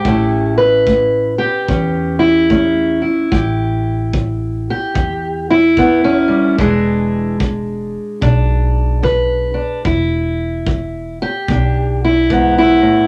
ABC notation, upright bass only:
X:1
M:4/4
L:1/8
Q:"Swing" 1/4=74
K:Emix
V:1 name="Upright bass" clef=bass
A,,,4 E,,4 | A,,,4 E,,4 | E,,,4 B,,,4 | E,,,4 B,,,4 |]